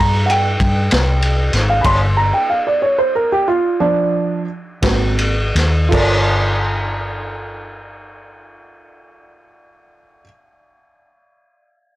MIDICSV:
0, 0, Header, 1, 4, 480
1, 0, Start_track
1, 0, Key_signature, -2, "minor"
1, 0, Tempo, 624350
1, 1418, Time_signature, 12, 3, 24, 8
1, 1907, Tempo, 665927
1, 3347, Tempo, 722892
1, 4307, Tempo, 751880
1, 8162, End_track
2, 0, Start_track
2, 0, Title_t, "Upright piano"
2, 0, Program_c, 0, 0
2, 0, Note_on_c, 0, 82, 80
2, 199, Note_on_c, 0, 78, 63
2, 217, Note_off_c, 0, 82, 0
2, 227, Note_off_c, 0, 78, 0
2, 232, Note_on_c, 0, 79, 83
2, 1270, Note_off_c, 0, 79, 0
2, 1303, Note_on_c, 0, 77, 75
2, 1394, Note_on_c, 0, 83, 63
2, 1422, Note_off_c, 0, 83, 0
2, 1425, Note_on_c, 0, 84, 96
2, 1535, Note_off_c, 0, 77, 0
2, 1657, Note_off_c, 0, 84, 0
2, 1668, Note_on_c, 0, 82, 74
2, 1778, Note_off_c, 0, 82, 0
2, 1795, Note_on_c, 0, 79, 75
2, 1903, Note_off_c, 0, 79, 0
2, 1919, Note_on_c, 0, 77, 73
2, 2020, Note_off_c, 0, 77, 0
2, 2043, Note_on_c, 0, 74, 74
2, 2141, Note_off_c, 0, 74, 0
2, 2153, Note_on_c, 0, 73, 72
2, 2255, Note_off_c, 0, 73, 0
2, 2270, Note_on_c, 0, 72, 79
2, 2373, Note_off_c, 0, 72, 0
2, 2393, Note_on_c, 0, 70, 77
2, 2494, Note_off_c, 0, 70, 0
2, 2515, Note_on_c, 0, 67, 89
2, 2615, Note_off_c, 0, 67, 0
2, 2626, Note_on_c, 0, 65, 79
2, 2853, Note_off_c, 0, 65, 0
2, 2859, Note_on_c, 0, 53, 74
2, 2860, Note_on_c, 0, 62, 90
2, 3320, Note_off_c, 0, 53, 0
2, 3335, Note_off_c, 0, 62, 0
2, 3575, Note_on_c, 0, 58, 52
2, 3576, Note_on_c, 0, 60, 47
2, 3583, Note_on_c, 0, 66, 56
2, 3894, Note_off_c, 0, 58, 0
2, 3894, Note_off_c, 0, 60, 0
2, 3898, Note_off_c, 0, 66, 0
2, 4283, Note_on_c, 0, 65, 64
2, 4296, Note_on_c, 0, 69, 64
2, 4305, Note_on_c, 0, 70, 66
2, 4317, Note_on_c, 0, 74, 74
2, 7038, Note_off_c, 0, 65, 0
2, 7050, Note_off_c, 0, 69, 0
2, 7059, Note_off_c, 0, 70, 0
2, 7071, Note_off_c, 0, 74, 0
2, 8162, End_track
3, 0, Start_track
3, 0, Title_t, "Fingered electric bass"
3, 0, Program_c, 1, 33
3, 0, Note_on_c, 1, 43, 96
3, 430, Note_off_c, 1, 43, 0
3, 460, Note_on_c, 1, 43, 84
3, 679, Note_off_c, 1, 43, 0
3, 710, Note_on_c, 1, 36, 99
3, 1152, Note_off_c, 1, 36, 0
3, 1180, Note_on_c, 1, 32, 96
3, 1400, Note_off_c, 1, 32, 0
3, 1419, Note_on_c, 1, 31, 99
3, 1777, Note_off_c, 1, 31, 0
3, 3578, Note_on_c, 1, 32, 100
3, 4031, Note_off_c, 1, 32, 0
3, 4061, Note_on_c, 1, 39, 98
3, 4287, Note_off_c, 1, 39, 0
3, 4307, Note_on_c, 1, 31, 91
3, 7060, Note_off_c, 1, 31, 0
3, 8162, End_track
4, 0, Start_track
4, 0, Title_t, "Drums"
4, 227, Note_on_c, 9, 51, 60
4, 304, Note_off_c, 9, 51, 0
4, 462, Note_on_c, 9, 36, 73
4, 464, Note_on_c, 9, 51, 57
4, 539, Note_off_c, 9, 36, 0
4, 541, Note_off_c, 9, 51, 0
4, 699, Note_on_c, 9, 51, 77
4, 710, Note_on_c, 9, 38, 115
4, 776, Note_off_c, 9, 51, 0
4, 787, Note_off_c, 9, 38, 0
4, 940, Note_on_c, 9, 51, 60
4, 1017, Note_off_c, 9, 51, 0
4, 1176, Note_on_c, 9, 51, 51
4, 1187, Note_on_c, 9, 38, 32
4, 1253, Note_off_c, 9, 51, 0
4, 1264, Note_off_c, 9, 38, 0
4, 1419, Note_on_c, 9, 36, 124
4, 1419, Note_on_c, 9, 49, 85
4, 1419, Note_on_c, 9, 51, 80
4, 1495, Note_off_c, 9, 49, 0
4, 1495, Note_off_c, 9, 51, 0
4, 1496, Note_off_c, 9, 36, 0
4, 3577, Note_on_c, 9, 51, 90
4, 3579, Note_on_c, 9, 36, 97
4, 3586, Note_on_c, 9, 38, 115
4, 3643, Note_off_c, 9, 51, 0
4, 3645, Note_off_c, 9, 36, 0
4, 3653, Note_off_c, 9, 38, 0
4, 3816, Note_on_c, 9, 51, 64
4, 3883, Note_off_c, 9, 51, 0
4, 4063, Note_on_c, 9, 51, 63
4, 4072, Note_on_c, 9, 38, 33
4, 4129, Note_off_c, 9, 51, 0
4, 4139, Note_off_c, 9, 38, 0
4, 4307, Note_on_c, 9, 36, 98
4, 4308, Note_on_c, 9, 49, 92
4, 4370, Note_off_c, 9, 36, 0
4, 4372, Note_off_c, 9, 49, 0
4, 8162, End_track
0, 0, End_of_file